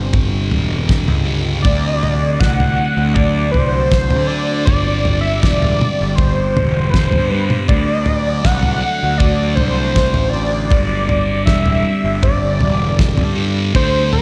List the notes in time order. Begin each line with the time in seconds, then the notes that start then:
Already playing: G1 G2 C3 D3 G3 C4 D4 G4
0.13 kick, floor tom
0.51 E1, floor tom
0.89 kick, snare
1.08 C#2, floor tom
1.26 G2 D3 G3
1.62 D2 D3 F#3 A3 F#4 D5, kick, floor tom
1.67 D4
2.03 floor tom
2.39 C2 F#5, kick, snare
2.60 floor tom
2.97 D2
3.14 D5, kick, floor tom
3.52 C2 C5, floor tom
3.92 kick, snare
4.11 D3, floor tom
4.27 A3 D4 D5
4.32 D3
4.65 G1 G2 D3 G3 G4 D5, kick, floor tom
5.05 floor tom
5.21 E5
5.41 E1 D5, kick, snare
5.62 floor tom
5.81 mid tom
6.01 G1
6.15 C5, kick, floor tom
6.57 E1, floor tom, mid tom
6.90 C5
6.94 kick, snare, mid tom
7.12 G2, floor tom
7.30 D3 G3 B4
7.34 G2
7.50 mid tom
7.68 D2 D3 F#3 A3 D4 F#4 D5, kick, floor tom
8.06 floor tom
8.44 C2 F#5, kick, snare
8.63 floor tom
9.03 D2
9.18 D5, kick, floor tom
9.55 C5, floor tom
9.59 C2
9.96 kick, snare
10.14 A1, floor tom
10.29 D4 D5
10.35 D3 A3
10.69 G1 G2 D3 G3 C4 G4 D5, kick, floor tom
10.74 G3
11.09 floor tom
11.46 E1 E5, kick, snare
11.66 floor tom
12.04 G1
12.23 D5, kick, floor tom
12.61 E1, floor tom
12.99 kick, snare
13.17 G2, floor tom
13.36 G2 D3 G3
13.73 D2 D3 F#3 A3 C4 D4 F#4 C5, kick, floor tom
14.12 B4, floor tom